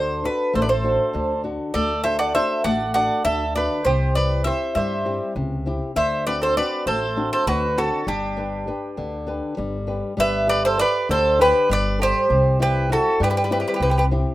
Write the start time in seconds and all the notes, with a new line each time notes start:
Already playing: D2 D3 D4 F#4 A4 C5
0.24 D4 F#4 A4 B4
0.54 A1 A3 A4 C5
0.62 B4 D5
0.69 A4 C5
0.84 D4 F#4 A4
1.13 D2 D3
1.44 D4 F#4 A4
1.74 D2 A3 A4 D5
2.04 D4 F#4 A4 C5 E5
2.19 D5 F#5
2.35 D4 F#4 A4 C5 E5
2.64 A1 A3 D5 F#5
2.94 D4 F#4 A4 D5 F#5
3.25 D2 D3 A4 E5
3.55 D4 F#4 A4 B4 D5
3.85 C2 C3 G4 C5
4.15 C4 E4 G4 B4 D5
4.44 C4 E4 G4 C5 E5
4.75 G2 G3 C5 E5
5.05 C4 E4 G4
5.36 C#2 C3
5.66 C4 E4 G4
5.96 D2 D3 C5 E5
6.27 C4 D4 F#4 B4 D5
6.42 A4 C5
6.56 C4 D4 F#4 B4 D5
6.86 A1 A3 A4 C5
7.16 C4 D4 F#4
7.33 A4 C5
7.47 D2 D3 F#4 B4
7.77 C4 D4 F#4 A4
8.07 G1 G3 D4 G4
8.37 D4 G4 B4
8.67 D4 G4 B4
8.97 D2 D3
9.27 D4 G4 B4
9.57 G1 G3
9.87 D4 G4 B4
10.17 G1 G3 B4 E5
10.47 G4 A4 B4 D5
10.65 A4 C5
10.78 G4 A4 B4 D5
11.09 D2 D3 A4 C5
11.38 G4 A4 B4
11.69 G1 G3 B4 D5
11.99 G4 A4 D5
12.03 C5
12.30 C2 C3
12.59 G3 C4 E4 G4 B4
12.89 C4 E4 F#4 A4
13.20 G2 G3 G4
13.24 B4
13.30 G4 B4
13.37 G4 B4
13.44 G4 B4
13.51 C4 E4 G4 B4
13.60 G4 B4
13.68 G4 B4
13.74 G4 B4
13.80 C2 C3 G4 B4
13.90 G4 B4
13.98 G4 B4
14.11 C4 E4 G4